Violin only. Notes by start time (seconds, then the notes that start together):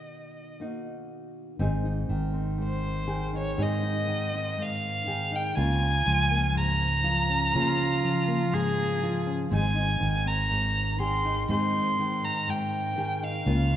Already playing: D#5
2.64 C5
3.38 C#5
3.62 D#5
4.61 F5
5.36 G5
5.58 G#5
6.57 A#5
9.55 G#5
10.27 A#5
11.01 C6
11.51 C6
12.24 A#5
12.50 G5
13.24 F5